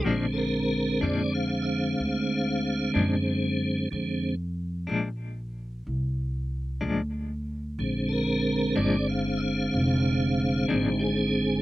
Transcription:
<<
  \new Staff \with { instrumentName = "Tonewheel organ" } { \time 12/8 \key bes \mixolydian \tempo 4. = 62 r8 <a' bes'>4 d''8 f''8 <e'' f''>2 r4. | r1. | r8 <a' bes'>4 d''8 f''8 <e'' f''>2 r8 <g' aes'>4 | }
  \new Staff \with { instrumentName = "Tonewheel organ" } { \clef bass \time 12/8 \key bes \mixolydian <d aes c'>1. | <d aes c'>8 r1 r4. | <d aes c'>1. | }
  \new Staff \with { instrumentName = "Clean electric guitar" } { \clef bass \time 12/8 \key bes \mixolydian <bes, f aes d'>8 r4 <bes, f aes d'>8 r2 r8 <bes, f aes d'>8 r4 | r4. <bes, f aes d'>8 r2 r8 <bes, f aes d'>8 r4 | r4. <bes, f aes d'>8 r2 r8 <bes, f aes d'>8 r4 | }
  \new Staff \with { instrumentName = "Upright bass" } { \clef bass \time 12/8 \key bes \mixolydian bes,,4. f,4. d,4. ges,4. | f,4. bes,,4. c,4. d,4. | bes,,4. g,,4. f,,4. aes,,4. | }
>>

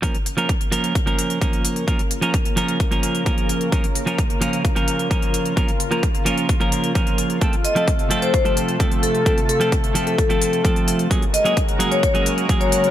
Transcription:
<<
  \new Staff \with { instrumentName = "Vibraphone" } { \time 4/4 \key bes \minor \tempo 4 = 130 r1 | r1 | r1 | r1 |
r8 ees''16 r4 c''16 c''16 r4 r16 a'16 a'16 | r8 a'16 r4 a'4. r8. | r8 ees''16 r4 des''16 des''16 r4 des''8. | }
  \new Staff \with { instrumentName = "Clean electric guitar" } { \time 4/4 \key bes \minor <f bes des' bes'>16 r8 <f bes des' bes'>16 r8 <f bes des' bes'>8 r16 <f bes des' bes'>8. <f bes des' bes'>4 | <f bes des' bes'>16 r8 <f bes des' bes'>16 r8 <f bes des' bes'>8 r16 <f bes des' bes'>8. <f bes des' bes'>4 | <f bes des' bes'>16 r8 <f bes des' bes'>16 r8 <f bes des' bes'>8 r16 <f bes des' bes'>8. <f bes des' bes'>4 | <f bes des' bes'>16 r8 <f bes des' bes'>16 r8 <f bes des' bes'>8 r16 <f bes des' bes'>8. <f bes des' bes'>4 |
<f a c' a'>16 r8 <f a c' a'>16 r8 <f a c' a'>8 r16 <f a c' a'>8. <f a c' a'>4 | <f a c' a'>16 r8 <f a c' a'>16 r8 <f a c' a'>8 r16 <f a c' a'>8. <f a c' a'>4 | <ges bes des' aes'>16 r8 <ges bes des' aes'>16 r8 <ges bes des' aes'>8 r16 <ges bes des' aes'>8. <ges bes des' aes'>4 | }
  \new Staff \with { instrumentName = "Analog synth pad" } { \time 4/4 \key bes \minor << { <des bes bes'>1~ | <des bes bes'>1~ | <des bes bes'>1~ | <des bes bes'>1 |
<c a a'>1~ | <c a a'>1 | <des aes bes'>1 | } \\ { f'1~ | f'1~ | f'1~ | f'1~ |
f'1~ | f'1 | ges'1 | } >> }
  \new DrumStaff \with { instrumentName = "Drums" } \drummode { \time 4/4 <hh bd>16 hh16 hh16 hh16 <hh bd>16 hh16 hh16 hh16 <hh bd>16 hh16 hh16 hh16 <hh bd>16 hh16 hh16 hh16 | <hh bd>16 hh16 hh16 hh16 <hh bd>16 hh16 hh16 hh16 <hh bd>16 hh16 hh16 hh16 <hh bd>16 hh16 hh16 hh16 | <hh bd>16 hh16 hh16 hh16 <hh bd>16 hh16 hh16 hh16 <hh bd>16 hh16 hh16 hh16 <hh bd>16 hh16 hh16 hh16 | <hh bd>16 hh16 hh16 hh16 <hh bd>16 hh16 hh16 hh16 <hh bd>16 hh16 hh16 hh16 <hh bd>16 hh16 hh16 hh16 |
<hh bd>16 hh16 hh16 hh16 <hh bd>16 hh16 hh16 hh16 <hh bd>16 hh16 hh16 hh16 <hh bd>16 hh16 hh16 hh16 | <hh bd>16 hh16 hh16 hh16 <hh bd>16 hh16 hh16 hh16 <hh bd>16 hh16 hh16 hh16 <hh bd>16 hh16 hh16 hh16 | <hh bd>16 hh16 hh16 hh16 <hh bd>16 hh16 hh16 hh16 <hh bd>16 hh16 hh16 hh16 <hh bd>16 hh16 hh16 hh16 | }
>>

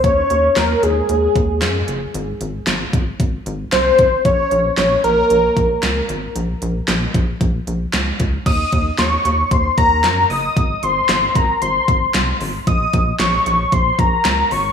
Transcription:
<<
  \new Staff \with { instrumentName = "Analog synth lead" } { \time 4/4 \key ees \dorian \tempo 4 = 114 des''4 bes'8 aes'2 r8 | r2. c''4 | des''4 des''8 bes'2 r8 | r1 |
ees'''4 des'''4 c'''8 bes''4 ees'''8~ | ees'''8 c'''4 bes''8 c'''4. r8 | ees'''4 des'''4 c'''8 bes''4 des'''8 | }
  \new Staff \with { instrumentName = "Analog synth bass" } { \clef bass \time 4/4 \key ees \dorian ees,8 ees,8 ees,8 ees,8 ees,8 ees,8 ges,8 ges,,8 | aes,,8 aes,,8 aes,,8 aes,,8 aes,,8 aes,,8 c,8 aes,,8 | bes,,8 bes,,8 bes,,8 bes,,8 bes,,8 bes,,8 des,8 aes,,8 | bes,,8 bes,,8 bes,,8 bes,,8 bes,,8 bes,,8 des,8 des,8 |
ees,8 ees,8 ees,8 ees,8 ees,8 ees,8 ges,8 ges,,8 | aes,,8 aes,,8 aes,,8 aes,,8 aes,,8 aes,,8 c,8 aes,,8 | bes,,8 bes,,8 bes,,8 bes,,8 bes,,8 bes,,8 des,8 aes,,8 | }
  \new DrumStaff \with { instrumentName = "Drums" } \drummode { \time 4/4 <hh bd>8 hh8 <hc hh sn>8 hh8 hh8 <hh bd>8 <hc hh sn>8 hh8 | hh8 hh8 <hc hh sn>8 <hh bd>8 <hh bd>8 hh8 <hc hh sn>8 <hh bd>8 | <hh bd>8 hh8 <hc hh sn>8 hh8 hh8 <hh bd>8 <hc hh sn>8 hh8 | hh8 hh8 <hc hh sn>8 <hh bd>8 <hh bd>8 hh8 <hc hh sn>8 <hh bd>8 |
<cymc hh bd>8 <hh bd>8 <hc hh sn>8 hh8 <hh bd>8 <hh bd>8 <hc hh sn>8 hho8 | <hh bd>8 hh8 <hc hh sn>8 <hh bd>8 hh8 <hh bd>8 <hc hh sn>8 hho8 | <hh bd>8 <hh bd>8 <hc hh sn>8 hh8 <hh bd>8 <hh bd>8 <hc hh sn>8 hho8 | }
>>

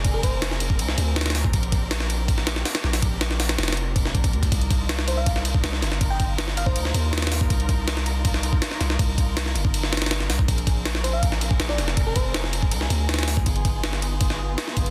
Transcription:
<<
  \new Staff \with { instrumentName = "FM electric piano" } { \time 4/4 \key c \minor \tempo 4 = 161 r16 bes'16 c''8. r2 r8. | r1 | r1 | r4. c''16 f''8 r4. r16 |
r16 g''8 r8. f''16 c''4 r4 r16 | r1 | r1 | r4. c''16 f''8 r4 d''8 r16 |
r16 bes'16 c''8. r2 r8. | r1 | }
  \new Staff \with { instrumentName = "String section" } { \time 4/4 \key c \minor << { <c' d' bes'>1~ | <c' d' bes'>1~ | <c' d' bes'>1 | <ees' bes'>1~ |
<ees' bes'>1~ | <ees' bes'>1~ | <ees' bes'>1 | <c' d' bes'>1~ |
<c' d' bes'>1 | <b ees'>1 | } \\ { aes'1 | g'1~ | g'1 | f'1~ |
f'1~ | f'1~ | f'1 | aes'1~ |
aes'1 | f'1 | } >> }
  \new Staff \with { instrumentName = "808-style bass" } { \clef bass \time 4/4 \key c \minor f,,2 c,8 d,4. | bes,,2. r8 bes,,8 | bes,,4. f,,4. bes,,8 d,8 | c,2. c,8 g,,8~ |
g,,2 d,8 ees,4. | c,2. r8 c,8 | c,4. g,,2 c,8 | bes,,2. bes,,8 f,,8~ |
f,,2 c,8 d,4. | g,,2. r8 g,,8 | }
  \new DrumStaff \with { instrumentName = "Drums" } \drummode { \time 4/4 <bd cymr>8 <bd cymr>8 <cymr sn>16 sn16 cymr16 bd16 cymr16 sn16 cymr8 <cymr sn>32 <cymr sn>32 <cymr sn>32 <cymr sn>32 <hho sn>16 bd16 | <bd cymr>16 cymr16 <bd cymr>8 <cymr sn>16 sn16 cymr8 <bd cymr>16 sn16 <cymr sn>16 sn16 <hho sn>16 <cymr sn>16 sn16 <hho sn>16 | <bd cymr>8 <cymr sn>16 sn16 <hho sn>16 <cymr sn>16 <cymr sn>32 <cymr sn>32 <cymr sn>32 <cymr sn>32 cymr8 <bd cymr>16 sn16 <bd cymr>16 <bd cymr>16 cymr16 <bd cymr>16 | <bd cymr>16 cymr16 <bd cymr>8 <cymr sn>16 sn16 cymr8 <bd cymr>16 sn16 cymr16 bd16 <cymr sn>16 sn16 <cymr sn>16 sn16 |
<bd cymr>8 <bd cymr>8 <cymr sn>16 sn16 cymr16 bd16 cymr16 sn16 cymr8 <cymr sn>32 <cymr sn>32 <cymr sn>32 <cymr sn>32 <hho sn>16 bd16 | <bd cymr>16 cymr16 <bd cymr>8 <cymr sn>16 sn16 cymr8 <bd cymr>16 sn16 cymr16 bd16 <cymr sn>16 sn16 <cymr sn>16 sn16 | <bd cymr>8 <bd cymr>8 <cymr sn>16 sn16 cymr16 bd16 cymr16 sn16 <cymr sn>32 <cymr sn>32 <cymr sn>32 <cymr sn>32 <cymr sn>16 sn16 <hho sn>16 bd16 | <bd cymr>16 cymr16 <bd cymr>8 <cymr sn>16 sn16 cymr8 <bd cymr>16 sn16 cymr16 bd16 <cymr sn>16 sn16 <cymr sn>16 sn16 |
<bd cymr>8 <bd cymr>8 <cymr sn>16 sn16 cymr16 bd16 cymr16 sn16 cymr8 <cymr sn>32 <cymr sn>32 <cymr sn>32 <cymr sn>32 <hho sn>16 bd16 | <bd cymr>16 cymr16 <bd cymr>8 <cymr sn>16 sn16 cymr8 <bd cymr>16 sn8. <cymr sn>16 sn16 <bd cymr>16 cymr16 | }
>>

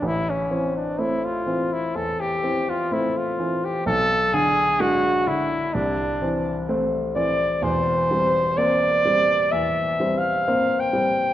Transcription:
<<
  \new Staff \with { instrumentName = "Trumpet" } { \time 4/4 \key a \phrygian \tempo 4 = 63 e'16 cis'8 d'16 e'16 f'8 e'16 a'16 g'8 f'16 e'16 f'8 g'16 | a'8 gis'8 fis'8 e'8 d'4 r8 d''8 | \key c \mixolydian c''4 d''4 \tuplet 3/2 { e''4 f''8~ f''8 g''4 } | }
  \new Staff \with { instrumentName = "Grand piano" } { \time 4/4 \key a \phrygian a,,8 <e c'>8 <a c'>8 <e c'>8 e,8 <e c'>8 <a c'>8 <e c'>8 | b,,8 <d d'>8 <gis d'>8 <d d'>8 c,8 <e c'>8 <a c'>8 <e c'>8 | \key c \mixolydian <e,, e,>8 <g c'>8 <bes c'>8 <g c'>8 e,8 <g c'>8 <bes c'>8 <g c'>8 | }
>>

